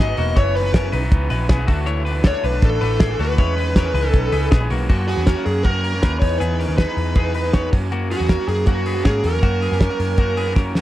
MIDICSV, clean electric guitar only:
0, 0, Header, 1, 2, 480
1, 0, Start_track
1, 0, Tempo, 377596
1, 469, Time_signature, 4, 2, 24, 8
1, 13743, End_track
2, 0, Start_track
2, 0, Title_t, "Clean electric guitar"
2, 0, Program_c, 0, 27
2, 0, Note_on_c, 0, 59, 54
2, 0, Note_on_c, 0, 68, 77
2, 227, Note_off_c, 0, 59, 0
2, 227, Note_off_c, 0, 68, 0
2, 229, Note_on_c, 0, 58, 59
2, 232, Note_on_c, 0, 66, 67
2, 460, Note_on_c, 0, 73, 112
2, 465, Note_off_c, 0, 58, 0
2, 468, Note_off_c, 0, 66, 0
2, 470, Note_on_c, 0, 64, 82
2, 696, Note_off_c, 0, 73, 0
2, 701, Note_on_c, 0, 71, 75
2, 709, Note_off_c, 0, 64, 0
2, 711, Note_on_c, 0, 63, 50
2, 930, Note_off_c, 0, 71, 0
2, 935, Note_on_c, 0, 70, 75
2, 947, Note_on_c, 0, 61, 60
2, 950, Note_off_c, 0, 63, 0
2, 1170, Note_off_c, 0, 70, 0
2, 1175, Note_on_c, 0, 71, 78
2, 1183, Note_on_c, 0, 63, 66
2, 1187, Note_off_c, 0, 61, 0
2, 1631, Note_off_c, 0, 71, 0
2, 1636, Note_off_c, 0, 63, 0
2, 1655, Note_on_c, 0, 71, 76
2, 1667, Note_on_c, 0, 63, 59
2, 1890, Note_off_c, 0, 71, 0
2, 1895, Note_off_c, 0, 63, 0
2, 1895, Note_on_c, 0, 68, 73
2, 1901, Note_on_c, 0, 59, 60
2, 2122, Note_off_c, 0, 59, 0
2, 2127, Note_on_c, 0, 66, 78
2, 2135, Note_on_c, 0, 57, 70
2, 2140, Note_off_c, 0, 68, 0
2, 2369, Note_on_c, 0, 73, 112
2, 2375, Note_off_c, 0, 66, 0
2, 2378, Note_on_c, 0, 64, 94
2, 2380, Note_off_c, 0, 57, 0
2, 2601, Note_off_c, 0, 73, 0
2, 2606, Note_on_c, 0, 71, 77
2, 2612, Note_off_c, 0, 64, 0
2, 2617, Note_on_c, 0, 62, 51
2, 2847, Note_off_c, 0, 62, 0
2, 2849, Note_on_c, 0, 69, 76
2, 2854, Note_off_c, 0, 71, 0
2, 2862, Note_on_c, 0, 62, 63
2, 3091, Note_off_c, 0, 62, 0
2, 3096, Note_off_c, 0, 69, 0
2, 3098, Note_on_c, 0, 71, 78
2, 3106, Note_on_c, 0, 62, 69
2, 3551, Note_off_c, 0, 71, 0
2, 3555, Note_off_c, 0, 62, 0
2, 3572, Note_on_c, 0, 71, 81
2, 3581, Note_on_c, 0, 62, 56
2, 3806, Note_off_c, 0, 62, 0
2, 3811, Note_on_c, 0, 68, 88
2, 3816, Note_off_c, 0, 71, 0
2, 3822, Note_on_c, 0, 62, 62
2, 4050, Note_off_c, 0, 68, 0
2, 4055, Note_on_c, 0, 66, 82
2, 4061, Note_off_c, 0, 62, 0
2, 4069, Note_on_c, 0, 57, 67
2, 4298, Note_off_c, 0, 66, 0
2, 4301, Note_on_c, 0, 73, 114
2, 4305, Note_off_c, 0, 57, 0
2, 4310, Note_on_c, 0, 64, 87
2, 4529, Note_off_c, 0, 73, 0
2, 4534, Note_on_c, 0, 71, 80
2, 4542, Note_off_c, 0, 64, 0
2, 4547, Note_on_c, 0, 63, 50
2, 4777, Note_off_c, 0, 71, 0
2, 4783, Note_off_c, 0, 63, 0
2, 4785, Note_on_c, 0, 70, 71
2, 4792, Note_on_c, 0, 61, 60
2, 5011, Note_off_c, 0, 70, 0
2, 5016, Note_on_c, 0, 71, 79
2, 5018, Note_off_c, 0, 61, 0
2, 5024, Note_on_c, 0, 63, 59
2, 5468, Note_off_c, 0, 71, 0
2, 5472, Note_off_c, 0, 63, 0
2, 5495, Note_on_c, 0, 71, 72
2, 5503, Note_on_c, 0, 63, 59
2, 5730, Note_off_c, 0, 71, 0
2, 5735, Note_on_c, 0, 68, 79
2, 5740, Note_off_c, 0, 63, 0
2, 5742, Note_on_c, 0, 59, 62
2, 5974, Note_off_c, 0, 59, 0
2, 5977, Note_off_c, 0, 68, 0
2, 5979, Note_on_c, 0, 66, 75
2, 5992, Note_on_c, 0, 58, 66
2, 6202, Note_off_c, 0, 66, 0
2, 6211, Note_off_c, 0, 58, 0
2, 6217, Note_on_c, 0, 66, 93
2, 6227, Note_on_c, 0, 58, 75
2, 6458, Note_off_c, 0, 66, 0
2, 6460, Note_on_c, 0, 68, 62
2, 6463, Note_off_c, 0, 58, 0
2, 6472, Note_on_c, 0, 59, 46
2, 6693, Note_off_c, 0, 68, 0
2, 6698, Note_on_c, 0, 70, 71
2, 6705, Note_off_c, 0, 59, 0
2, 6705, Note_on_c, 0, 61, 62
2, 7150, Note_off_c, 0, 70, 0
2, 7154, Note_off_c, 0, 61, 0
2, 7184, Note_on_c, 0, 66, 75
2, 7191, Note_on_c, 0, 58, 57
2, 7418, Note_on_c, 0, 70, 67
2, 7419, Note_off_c, 0, 58, 0
2, 7422, Note_off_c, 0, 66, 0
2, 7424, Note_on_c, 0, 61, 55
2, 7651, Note_off_c, 0, 70, 0
2, 7657, Note_on_c, 0, 71, 62
2, 7662, Note_off_c, 0, 61, 0
2, 7667, Note_on_c, 0, 63, 50
2, 8110, Note_off_c, 0, 71, 0
2, 8115, Note_off_c, 0, 63, 0
2, 8139, Note_on_c, 0, 68, 109
2, 8148, Note_on_c, 0, 59, 83
2, 8376, Note_off_c, 0, 68, 0
2, 8381, Note_on_c, 0, 70, 63
2, 8384, Note_off_c, 0, 59, 0
2, 8396, Note_on_c, 0, 61, 55
2, 8611, Note_off_c, 0, 70, 0
2, 8616, Note_on_c, 0, 71, 78
2, 8628, Note_on_c, 0, 63, 59
2, 8629, Note_off_c, 0, 61, 0
2, 9071, Note_off_c, 0, 71, 0
2, 9077, Note_off_c, 0, 63, 0
2, 9105, Note_on_c, 0, 68, 73
2, 9112, Note_on_c, 0, 59, 54
2, 9336, Note_off_c, 0, 68, 0
2, 9341, Note_on_c, 0, 71, 67
2, 9345, Note_off_c, 0, 59, 0
2, 9350, Note_on_c, 0, 63, 51
2, 9577, Note_off_c, 0, 71, 0
2, 9582, Note_on_c, 0, 73, 64
2, 9587, Note_off_c, 0, 63, 0
2, 9596, Note_on_c, 0, 66, 49
2, 10034, Note_off_c, 0, 73, 0
2, 10042, Note_off_c, 0, 66, 0
2, 10068, Note_on_c, 0, 66, 98
2, 10076, Note_on_c, 0, 58, 81
2, 10301, Note_on_c, 0, 68, 78
2, 10306, Note_off_c, 0, 66, 0
2, 10310, Note_off_c, 0, 58, 0
2, 10311, Note_on_c, 0, 59, 58
2, 10539, Note_off_c, 0, 68, 0
2, 10544, Note_on_c, 0, 70, 78
2, 10548, Note_off_c, 0, 59, 0
2, 10555, Note_on_c, 0, 61, 63
2, 10996, Note_off_c, 0, 70, 0
2, 11002, Note_off_c, 0, 61, 0
2, 11025, Note_on_c, 0, 66, 75
2, 11031, Note_on_c, 0, 58, 55
2, 11266, Note_off_c, 0, 66, 0
2, 11267, Note_on_c, 0, 68, 78
2, 11269, Note_off_c, 0, 58, 0
2, 11278, Note_on_c, 0, 59, 60
2, 11504, Note_off_c, 0, 68, 0
2, 11510, Note_on_c, 0, 70, 63
2, 11512, Note_off_c, 0, 59, 0
2, 11519, Note_on_c, 0, 61, 52
2, 11960, Note_off_c, 0, 70, 0
2, 11965, Note_off_c, 0, 61, 0
2, 11985, Note_on_c, 0, 66, 109
2, 11994, Note_on_c, 0, 58, 84
2, 12226, Note_off_c, 0, 66, 0
2, 12229, Note_on_c, 0, 68, 70
2, 12231, Note_off_c, 0, 58, 0
2, 12243, Note_on_c, 0, 59, 52
2, 12466, Note_off_c, 0, 68, 0
2, 12471, Note_on_c, 0, 70, 72
2, 12475, Note_off_c, 0, 59, 0
2, 12478, Note_on_c, 0, 61, 60
2, 12921, Note_off_c, 0, 70, 0
2, 12925, Note_off_c, 0, 61, 0
2, 12945, Note_on_c, 0, 66, 77
2, 12950, Note_on_c, 0, 58, 67
2, 13183, Note_on_c, 0, 68, 78
2, 13187, Note_off_c, 0, 66, 0
2, 13189, Note_off_c, 0, 58, 0
2, 13194, Note_on_c, 0, 59, 57
2, 13412, Note_off_c, 0, 68, 0
2, 13417, Note_on_c, 0, 70, 68
2, 13428, Note_on_c, 0, 61, 47
2, 13431, Note_off_c, 0, 59, 0
2, 13743, Note_off_c, 0, 61, 0
2, 13743, Note_off_c, 0, 70, 0
2, 13743, End_track
0, 0, End_of_file